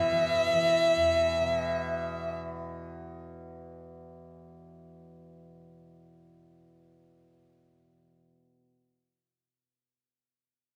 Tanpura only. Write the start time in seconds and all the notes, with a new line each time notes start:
Already playing: E2 B2 E3
0.12 E3
0.54 E3
0.96 E2
1.41 B2